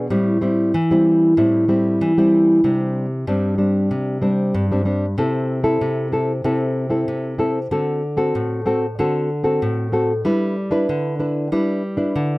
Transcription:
0.10 0.71 A2 medium
0.10 0.37 G3 medium
0.10 0.38 C4 medium
0.10 0.38 E4 medium
0.41 0.72 G3 medium
0.41 0.72 C4 medium
0.41 0.72 E4 medium
0.74 1.34 E3 medium
0.91 1.33 G3 medium
0.91 1.33 C4 medium
0.91 1.33 E4 medium
1.37 1.98 A2 medium
1.37 1.64 G3 medium
1.37 1.64 C4 medium
1.37 1.65 E4 medium
1.68 2.11 G3 medium
1.68 2.11 C4 medium
1.68 2.12 E4 medium
2.01 2.61 E3 medium
2.18 2.60 G3 medium
2.18 2.60 C4 medium
2.18 2.60 E4 medium
2.64 3.24 C3 medium
2.64 3.05 G3 medium
2.64 3.05 C4 medium
2.64 3.06 D4 medium
3.27 3.88 G2 medium
3.27 3.54 G3 medium
3.27 3.54 C4 medium
3.27 3.55 D4 medium
3.58 4.17 G3 soft
3.58 4.17 C4 soft
3.58 4.17 D4 medium
3.91 4.51 C3 medium
4.22 4.65 G3 medium
4.22 4.65 C4 medium
4.22 4.65 D4 medium
4.54 5.15 G2 medium
4.72 4.82 G3 medium
4.72 4.82 C4 medium
4.72 4.82 D4 medium
4.85 5.04 G3 medium
4.85 5.05 C4 medium
4.85 5.05 D4 medium
5.18 5.78 C3 medium
5.18 5.61 C4 soft
5.18 5.61 E4 soft
5.18 5.61 A4 medium
5.63 6.07 C4 medium
5.63 6.07 E4 medium
5.63 6.07 A4 medium
5.81 6.42 C3 medium
6.12 6.31 C4 medium
6.12 6.32 E4 medium
6.12 6.32 A4 medium
6.44 7.05 C3 medium
6.44 6.87 C4 medium
6.44 6.87 E4 soft
6.44 6.88 A4 medium
6.90 7.34 C4 soft
6.90 7.34 E4 medium
6.90 7.34 A4 medium
7.08 7.68 C3 medium
7.38 7.58 C4 medium
7.38 7.58 E4 medium
7.38 7.58 A4 medium
7.71 8.32 D3 medium
7.71 8.01 C4 medium
7.71 8.01 F#4 soft
7.71 8.02 A4 medium
8.17 8.61 C4 medium
8.17 8.61 F#4 medium
8.17 8.61 A4 medium
8.35 8.95 A2 medium
8.66 8.85 C4 medium
8.66 8.85 F#4 medium
8.66 8.85 A4 medium
8.99 9.59 D3 medium
8.99 9.29 C4 soft
8.99 9.29 F#4 soft
8.99 9.29 A4 medium
9.44 9.87 C4 medium
9.44 9.88 F#4 medium
9.44 9.88 A4 medium
9.62 10.22 A2 medium
9.92 10.12 C4 medium
9.92 10.12 F#4 medium
9.92 10.12 A4 medium
10.25 10.85 G3 medium
10.25 10.55 D4 medium
10.25 10.55 E4 medium
10.25 10.55 B4 medium
10.71 11.14 D4 medium
10.71 11.15 E4 medium
10.71 11.15 B4 medium
10.89 11.49 D3 medium
11.19 11.47 D4 medium
11.19 11.47 E4 soft
11.19 11.47 B4 medium
11.52 12.12 G3 medium
11.52 11.82 D4 soft
11.52 11.82 E4 soft
11.52 11.82 B4 medium
11.97 12.38 D4 medium
11.97 12.38 E4 medium
11.97 12.38 B4 medium
12.16 12.38 D3 medium

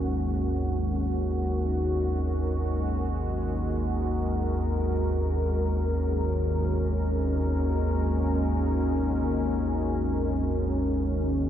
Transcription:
0.00 11.50 G#1 medium
0.00 11.50 D#2 medium
0.00 2.19 G#3 medium
0.00 2.21 C#4 medium
0.00 11.50 F#4 medium
0.00 2.20 A#4 medium
2.21 11.50 G#3 medium
3.07 11.50 A#4 medium
4.11 11.50 C#4 medium

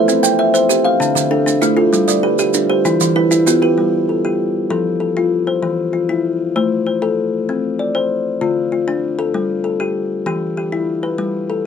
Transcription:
0.00 0.24 B4 medium
0.00 0.23 C5 medium
0.00 0.24 C5 medium
0.00 0.39 E5 medium
0.08 0.39 C4 medium
0.08 maracas medium
0.23 0.54 C4 medium
0.23 0.69 G5 medium
0.23 maracas medium
0.39 0.84 C5 medium
0.39 0.85 E5 medium
0.54 0.85 C5 medium
0.54 maracas medium
0.69 1.00 G4 medium
0.69 maracas medium
0.85 1.31 C5 medium
0.85 1.16 F5 medium
1.00 1.31 D3 medium
1.00 1.45 D4 medium
1.00 maracas soft
1.15 1.46 D3 medium
1.15 maracas medium
1.31 1.77 D4 medium
1.31 1.77 A4 medium
1.46 1.77 D4 medium
1.46 maracas medium
1.61 1.93 A3 medium
1.61 2.08 E4 medium
1.61 2.08 F4 medium
1.61 maracas medium
1.77 2.08 F4 medium
1.77 2.23 A4 medium
1.93 2.23 G3 medium
1.93 maracas soft
2.08 2.39 G3 medium
2.08 2.54 D5 medium
2.08 maracas medium
2.23 2.68 G4 medium
2.23 2.69 B4 medium
2.39 2.70 G4 medium
2.39 maracas medium
2.54 2.85 D4 medium
2.54 maracas medium
2.70 3.16 G4 medium
2.70 3.00 C5 medium
2.85 3.16 E3 medium
2.85 3.30 E4 medium
2.85 maracas medium
3.01 3.31 E3 loud
3.01 maracas medium
3.16 3.62 E4 medium
3.16 3.62 B4 medium
3.31 3.62 E4 medium
3.31 maracas medium
3.46 3.78 B3 medium
3.46 3.93 F4 medium
3.46 3.93 G4 medium
3.46 maracas medium
3.62 3.93 G4 medium
3.62 4.09 B4 medium
3.78 4.08 G3 medium
4.09 4.55 A4 soft
4.25 4.55 G4 medium
4.70 5.01 F3 medium
4.70 4.99 A4 medium
5.00 5.47 A4 medium
5.17 5.48 F4 medium
5.47 5.78 C5 medium
5.63 5.94 E3 medium
5.93 6.40 F4 medium
6.09 6.40 E4 medium
6.56 6.87 A3 medium
6.56 6.85 C5 medium
6.87 7.33 C5 medium
7.02 7.33 A4 medium
7.49 7.80 C4 medium
7.79 8.26 D5 soft
7.95 8.26 C5 medium
8.41 8.72 D3 medium
8.41 8.71 F4 medium
8.72 9.18 F4 medium
8.88 9.19 D4 medium
9.19 9.49 A4 medium
9.34 9.65 G3 medium
9.64 10.11 A4 medium
9.80 10.11 G4 medium
10.26 10.57 E3 medium
10.26 10.56 G4 medium
10.57 11.03 G4 medium
10.72 11.03 E4 medium
11.03 11.34 B4 medium
11.18 11.49 G3 medium
11.50 11.66 A4 medium

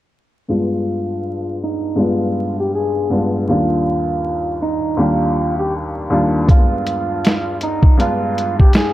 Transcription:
0.48 1.73 G2 medium
0.48 1.73 G#3 medium
0.48 1.73 B3 medium
0.48 1.74 D4 soft
0.48 1.58 F4 medium
0.48 1.74 F4 medium
1.64 1.96 D#4 medium
1.96 2.92 G2 medium
1.96 2.92 G#3 medium
1.96 2.93 B3 medium
1.96 2.93 D4 medium
1.96 2.93 F4 medium
2.01 2.56 F4 medium
2.60 2.73 G4 medium
2.75 3.08 G#4 medium
3.10 3.42 G2 medium
3.10 3.43 G#3 medium
3.10 3.43 B3 medium
3.10 3.43 D4 medium
3.10 3.44 F4 medium
3.48 4.73 D#2 medium
3.48 4.73 G3 soft
3.48 4.73 A#3 medium
3.48 4.74 D4 medium
3.48 4.58 F4 medium
3.48 4.74 F4 medium
4.62 4.95 D#4 medium
4.97 5.93 D#2 medium
4.97 5.93 G3 medium
4.97 5.93 A#3 medium
4.97 5.94 D4 medium
4.97 5.55 F4 medium
4.97 5.94 G4 medium
5.59 5.73 G4 medium
6.10 6.42 D#2 medium
6.10 6.43 G3 medium
6.10 6.43 A#3 medium
6.10 6.43 D4 medium
6.10 6.44 F4 medium
6.47 7.72 G2 medium
6.47 7.73 G#3 soft
6.47 6.56 A#3 soft
6.47 7.73 D4 medium
6.47 7.58 F4 medium
6.47 7.74 F4 medium
6.47 kick loud
6.47 closed hi-hat medium
6.55 7.76 B3 soft
6.87 closed hi-hat medium
7.25 snare medium
7.25 closed hi-hat medium
7.61 7.96 D#4 medium
7.61 closed hi-hat medium
7.83 kick medium
7.97 8.93 G2 medium
7.97 8.93 G#3 medium
7.97 8.93 B3 medium
7.97 8.93 D4 medium
7.97 8.93 F4 medium
7.97 8.55 F4 medium
7.97 closed hi-hat medium
8.38 closed hi-hat medium
8.60 8.73 G4 medium
8.60 kick medium
8.73 8.93 G#4 medium
8.73 snare loud
8.73 closed hi-hat medium

